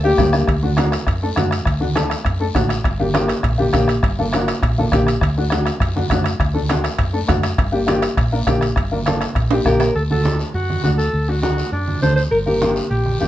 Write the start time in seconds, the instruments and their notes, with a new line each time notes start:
Already playing: fingered electric bass D2
0.04 upright piano A#3 D4 G4, alto saxophone G4
0.18 fingered electric bass D2, upright piano A#3 D4 G4, bombo low, bombo rim, high conga, low conga, low timbale, short guiro
0.32 upright piano A#3 D4 G4, bombo rim, short guiro
0.47 fingered electric bass D2, bombo low, bombo rim, high conga, high timbale, long guiro
0.63 upright piano A3 D4 F#4, high conga
0.77 upright piano A3 D4 F#4, bombo rim, high conga, high timbale, short guiro
0.92 bombo rim, high timbale, short guiro
1.07 fingered electric bass F#2, bombo low, bombo rim, high conga, high timbale, long guiro
1.23 upright piano A3 D4 A4
1.36 fingered electric bass F#2, upright piano A3 D4 F#4, bombo rim, high conga, high timbale, low timbale, short guiro
1.51 bombo rim, high timbale, short guiro
1.65 fingered electric bass D2, bombo low, bombo rim, high conga, high timbale, long guiro
1.80 upright piano A3 D4 F#4, high conga
1.95 upright piano A3 D4 A4, bombo rim, high conga, high timbale, short guiro
2.10 bombo rim, high timbale, short guiro
2.25 fingered electric bass F#2, bombo low, bombo rim, high conga, high timbale, long guiro
2.40 upright piano A3 D4 A4
2.55 fingered electric bass A1, upright piano A3 D4 F#4, bombo low, bombo rim, high conga, high timbale, low timbale, short guiro
2.69 bombo rim, high timbale, short guiro
2.84 fingered electric bass G1, bombo low, bombo rim, high conga, high timbale, long guiro
3.00 upright piano A#3 D4 G4, high conga
3.14 upright piano A#3 D4 G4, bombo rim, high conga, high timbale, short guiro
3.28 bombo rim, high timbale, short guiro
3.43 fingered electric bass A#1, bombo low, bombo rim, high conga, high timbale, long guiro
3.58 upright piano A#3 D4 G4, high conga
3.73 fingered electric bass A#1, upright piano A#3 D4 G4, bombo low, bombo rim, high conga, high timbale, low timbale, short guiro
3.88 bombo rim, high timbale, short guiro
4.03 fingered electric bass G1, bombo low, bombo rim, high conga, high timbale, long guiro
4.19 upright piano A#3 D4 A4, high conga
4.33 upright piano A#3 D4 F#4, bombo rim, high conga, high timbale, short guiro
4.48 bombo rim, high timbale, short guiro
4.62 fingered electric bass A#1, bombo low, bombo rim, high conga, high timbale, long guiro
4.78 upright piano A#3 D4 A4, high conga
4.92 fingered electric bass A#1, upright piano A#3 D4 G4, bombo low, bombo rim, high conga, high timbale, low timbale, short guiro
5.07 bombo rim, high timbale, short guiro
5.21 fingered electric bass D2, bombo low, bombo rim, high conga, high timbale, long guiro
5.37 upright piano A3 D4 F#4
5.50 upright piano A3 D4 F#4, bombo rim, high conga, high timbale, short guiro
5.66 bombo rim, high timbale, short guiro
5.80 fingered electric bass F#2, bombo low, bombo rim, high conga, high timbale, long guiro
5.96 upright piano A3 D4 F#4, high conga
6.10 fingered electric bass F#2, upright piano A3 D4 F#4, bombo low, bombo rim, high conga, high timbale, low timbale, short guiro
6.24 bombo rim, high timbale, short guiro
6.40 fingered electric bass D2, bombo low, bombo rim, high conga, high timbale, long guiro
6.54 upright piano A3 D4 A4, high conga
6.69 upright piano A3 D4 F#4, bombo rim, high conga, high timbale, short guiro
6.84 bombo rim, high timbale, short guiro
6.98 fingered electric bass F#2, bombo low, bombo rim, high conga, high timbale, long guiro
7.13 upright piano A3 D4 A4
7.28 fingered electric bass F#2, upright piano A3 D4 F#4, bombo low, bombo rim, high conga, high timbale, low timbale, short guiro
7.43 bombo rim, high timbale, short guiro
7.58 fingered electric bass G1, bombo low, bombo rim, high conga, high timbale, long guiro
7.72 upright piano A#3 D4 G4
7.87 upright piano A#3 D4 G4, bombo rim, high conga, high timbale, short guiro
8.02 bombo rim, high timbale, short guiro
8.17 fingered electric bass A#1, bombo low, bombo rim, high conga, high timbale, long guiro
8.32 upright piano A#3 D4 A#4
8.47 fingered electric bass A#1, upright piano A#3 D4 G4, bombo low, bombo rim, high conga, high timbale, low timbale, short guiro
8.61 bombo rim, high timbale, short guiro
8.76 fingered electric bass G1, bombo low, bombo rim, high conga, high timbale, long guiro
8.92 upright piano A#3 D4 A#4, high conga
9.06 upright piano A#3 D4 A4, bombo rim, high conga, high timbale, short guiro
9.21 bombo rim, high timbale, short guiro
9.35 fingered electric bass A#1, bombo low, bombo rim, high conga, high timbale, long guiro
9.51 upright piano A#3 D4 G4, high timbale
9.65 fingered electric bass A#1, upright piano A#3 D4 G4, alto saxophone A#4, bombo low, bombo rim, high conga, low timbale, short guiro
9.80 bombo rim, low timbale, short guiro
9.95 fingered electric bass D2, alto saxophone A4, high conga, long guiro
10.10 upright piano A3 D4 F#4, alto saxophone A4, high conga
10.23 upright piano A3 D4 A4, high conga, short guiro
10.39 short guiro
10.54 fingered electric bass F#2, alto saxophone F#4, high conga, long guiro
10.70 high conga
10.83 fingered electric bass D2, upright piano A3 D4 F#4, alto saxophone F#4, high conga, short guiro
10.98 alto saxophone A4, short guiro
11.13 fingered electric bass D2, high conga, long guiro
11.28 upright piano A3 D4 F#4, alto saxophone F#4
11.42 upright piano A3 D4 F#4, alto saxophone F#4, high conga, short guiro
11.58 short guiro
11.72 fingered electric bass F#2, alto saxophone D4, high conga, long guiro
11.88 high conga
12.02 fingered electric bass D2, upright piano A3 D4 A4, alto saxophone C5, high conga, short guiro
12.16 alto saxophone C5, short guiro
12.31 fingered electric bass G1, alto saxophone A#4, high conga, long guiro
12.46 upright piano A#3 D4 G4, alto saxophone A#4, high conga
12.62 upright piano A#3 D4 G4, high conga, short guiro
12.76 short guiro
12.90 fingered electric bass A#1, alto saxophone G4, high conga, long guiro
13.06 high conga
13.20 fingered electric bass G1, upright piano A#3 D4 G4, alto saxophone G4, high conga, short guiro